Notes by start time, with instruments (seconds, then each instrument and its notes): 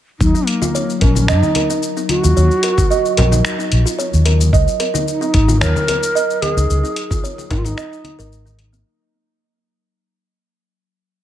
0.19 fretless electric bass D#2, singing bowl F#3, ney D#4, kick, shaker
0.35 kalimba D#4, shaker
0.46 ney A#3, closed hi-hat
0.62 kalimba F4, high conga, shaker
0.75 kalimba C#5, shaker
0.90 shaker
1.00 fretless electric bass A#1, ney C#4, kalimba A#4, kick, closed hi-hat
1.15 high conga, shaker
1.28 fretless electric bass F#2, ney D#4, kalimba D#5, finger snap, shaker
1.42 high conga, shaker
1.55 kalimba A#4, closed hi-hat, muted conga, high conga
1.70 kalimba D#4, shaker
1.83 shaker
1.97 kalimba D#4, shaker
2.09 ney F#4, closed hi-hat, high conga
2.23 fretless electric bass D#2, kalimba F4, shaker
2.37 fretless electric bass D#2, kalimba C#5, shaker
2.51 shaker
2.63 kalimba A#4, closed hi-hat
2.78 kick, high conga, shaker
2.90 kalimba D#5, shaker
3.05 shaker
3.17 fretless electric bass A#1, kalimba A#4, closed hi-hat, low conga
3.31 kalimba D#4, muted conga, high conga, shaker
3.45 finger snap, shaker
3.59 kalimba D#4, shaker
3.72 fretless electric bass A#1, closed hi-hat
3.86 kalimba F4, shaker
3.99 kalimba C#5, shaker
4.13 fretless electric bass D#2, high conga, shaker
4.25 kalimba A#4, closed hi-hat
4.40 high conga, shaker
4.53 fretless electric bass C#2, kalimba D#5, kick, shaker
4.68 shaker
4.80 kalimba A#4, closed hi-hat
4.94 kalimba D#4, high conga, shaker
5.07 ney D#4, shaker
5.21 kalimba D#4, shaker
5.34 fretless electric bass G#1, kick, closed hi-hat
5.48 kalimba F4, high conga, shaker
5.60 fretless electric bass D#2, ney A#4, kalimba C#5, finger snap, shaker
5.76 high conga, shaker
5.87 kalimba A#4, closed hi-hat, muted conga, high conga
6.03 shaker
6.15 kalimba D#5, shaker
6.30 shaker
6.42 ney G#4, kalimba A#4, closed hi-hat, high conga
6.56 fretless electric bass C#2, kalimba D#4, shaker
6.70 fretless electric bass C#2, shaker
6.84 kalimba D#4, shaker
6.96 closed hi-hat
7.10 kalimba F4, kick, high conga, shaker
7.24 kalimba C#5, shaker
7.38 muted conga, shaker
7.50 fretless electric bass G#1, ney D#4, kalimba A#4, kick, closed hi-hat, low conga
7.58 ney F4
7.64 ney D#4, muted conga, high conga, shaker
7.77 kalimba D#5, finger snap, shaker
7.93 shaker
8.04 kalimba D#4, closed hi-hat, high conga
8.19 fretless electric bass G#1, kalimba A#4, shaker
8.32 shaker
8.46 kalimba D#4, high conga, shaker
8.59 closed hi-hat
8.72 kalimba A#3, high conga, shaker